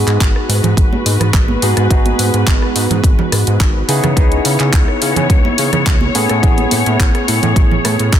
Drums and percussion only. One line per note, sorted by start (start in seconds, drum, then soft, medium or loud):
0.08 clap soft
0.08 closed hi-hat medium
0.20 kick loud
0.20 clap loud
0.20 closed hi-hat medium
0.36 cross-stick medium
0.50 open hi-hat loud
0.64 closed hi-hat medium
0.64 low conga medium
0.77 kick loud
0.77 closed hi-hat medium
0.93 high conga medium
1.06 open hi-hat loud
1.20 cross-stick medium
1.20 closed hi-hat medium
1.20 low conga medium
1.34 kick loud
1.34 clap loud
1.34 closed hi-hat medium
1.48 high conga medium
1.62 open hi-hat loud
1.77 cross-stick medium
1.77 closed hi-hat medium
1.90 kick loud
1.90 closed hi-hat medium
2.06 closed hi-hat soft
2.06 high conga medium
2.19 open hi-hat loud
2.34 closed hi-hat medium
2.47 kick loud
2.47 clap loud
2.47 closed hi-hat medium
2.62 cross-stick medium
2.76 open hi-hat loud
2.90 closed hi-hat soft
2.90 low conga medium
3.04 kick loud
3.04 closed hi-hat medium
3.19 low conga medium
3.32 cross-stick medium
3.32 open hi-hat loud
3.47 closed hi-hat soft
3.60 kick loud
3.60 clap loud
3.60 closed hi-hat medium
3.89 open hi-hat loud
4.03 cross-stick medium
4.03 closed hi-hat medium
4.03 low conga loud
4.17 kick loud
4.17 closed hi-hat medium
4.32 closed hi-hat soft
4.45 open hi-hat loud
4.60 clap soft
4.60 closed hi-hat soft
4.73 kick loud
4.73 clap loud
4.73 closed hi-hat medium
4.88 cross-stick medium
5.02 open hi-hat loud
5.16 closed hi-hat soft
5.16 low conga medium
5.30 kick loud
5.30 closed hi-hat medium
5.45 high conga medium
5.58 open hi-hat loud
5.73 cross-stick medium
5.73 closed hi-hat soft
5.73 low conga medium
5.86 kick loud
5.86 clap loud
5.86 closed hi-hat medium
6.01 high conga medium
6.15 open hi-hat loud
6.29 cross-stick medium
6.29 closed hi-hat soft
6.43 kick loud
6.43 closed hi-hat medium
6.57 closed hi-hat soft
6.57 high conga medium
6.71 open hi-hat loud
6.71 high conga medium
6.86 closed hi-hat soft
7.00 kick loud
7.00 clap loud
7.00 closed hi-hat medium
7.15 cross-stick medium
7.15 closed hi-hat soft
7.28 open hi-hat loud
7.43 closed hi-hat soft
7.43 low conga medium
7.56 kick loud
7.56 closed hi-hat medium
7.71 low conga medium
7.85 cross-stick medium
7.85 open hi-hat loud
7.99 closed hi-hat soft
8.13 kick loud
8.13 clap loud
8.13 closed hi-hat medium